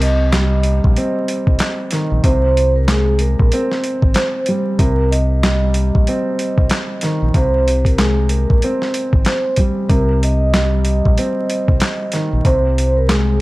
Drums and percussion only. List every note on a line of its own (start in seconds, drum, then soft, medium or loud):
0.02 closed hi-hat medium
0.33 snare loud
0.33 clap medium
0.33 closed hi-hat medium
0.63 closed hi-hat medium
0.84 kick medium
0.96 closed hi-hat medium
1.28 closed hi-hat medium
1.47 kick loud
1.59 snare loud
1.59 clap medium
1.59 closed hi-hat medium
1.91 snare soft
1.91 closed hi-hat medium
2.24 kick loud
2.24 closed hi-hat medium
2.57 closed hi-hat medium
2.88 snare loud
2.88 clap medium
2.88 closed hi-hat medium
3.19 closed hi-hat medium
3.40 kick loud
3.52 closed hi-hat medium
3.72 snare soft
3.84 closed hi-hat medium
4.02 kick loud
4.14 snare loud
4.14 clap medium
4.14 closed hi-hat medium
4.46 closed hi-hat medium
4.79 kick loud
4.79 closed hi-hat medium
5.12 closed hi-hat medium
5.43 snare loud
5.43 clap medium
5.43 closed hi-hat medium
5.74 closed hi-hat medium
5.95 kick medium
6.07 closed hi-hat medium
6.39 closed hi-hat medium
6.58 kick loud
6.70 snare loud
6.70 clap medium
6.70 closed hi-hat medium
7.01 snare soft
7.01 closed hi-hat medium
7.34 kick loud
7.34 closed hi-hat medium
7.68 closed hi-hat medium
7.85 kick medium
7.85 closed hi-hat medium
7.98 snare loud
7.98 clap medium
7.98 closed hi-hat medium
8.29 closed hi-hat medium
8.50 kick medium
8.62 closed hi-hat medium
8.82 snare soft
8.94 closed hi-hat medium
9.13 kick loud
9.25 snare loud
9.25 clap medium
9.25 closed hi-hat medium
9.56 kick medium
9.56 closed hi-hat medium
9.89 kick loud
9.89 closed hi-hat medium
10.23 closed hi-hat medium
10.54 snare loud
10.54 clap medium
10.54 closed hi-hat medium
10.85 closed hi-hat medium
11.05 kick loud
11.18 closed hi-hat medium
11.50 closed hi-hat medium
11.68 kick loud
11.80 snare loud
11.80 clap medium
11.80 closed hi-hat medium
12.12 snare soft
12.12 closed hi-hat medium
12.45 kick loud
12.45 closed hi-hat medium
12.78 closed hi-hat medium
13.09 snare loud
13.09 clap medium
13.09 closed hi-hat medium